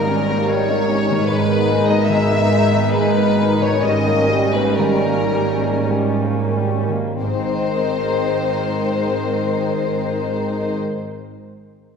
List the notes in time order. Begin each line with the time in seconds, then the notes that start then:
Already playing: G#1 G#2 D#3 G3 C#4 D#4 A#4
0.08 B3 C#4
0.29 A#3 C#4
0.49 G3 B3 C#5
0.69 A#3 C#4
0.89 C#4 D#4
1.10 D#3 A#3
1.30 G#1 G#2 D#3 G#3 D#4 B4
1.50 B3
1.70 G#3 A#3
1.89 B3 D#5
2.08 D#3 G#3 E5
2.29 B3
2.50 G#3 A#3
2.71 B3
2.93 G#3 A#3 B4
3.15 B3
3.37 G#3 D#4
3.60 D#3 B3 C#5
3.83 G#2 G3 C#4 D#5
4.05 A#3
4.29 G3 G#3
4.52 A#3 B4
4.78 D#3 G3 A#4
5.04 A#3
5.31 G3 G#3
5.60 A#3
5.89 G3 G#3
6.20 A#3
6.54 G3 C#4
6.88 D#3 A#3
7.20 G#1 G#2 D#3 G#3 C4 D#4 C5
7.27 G#3
7.34 D#4
7.41 G#4
7.48 D#5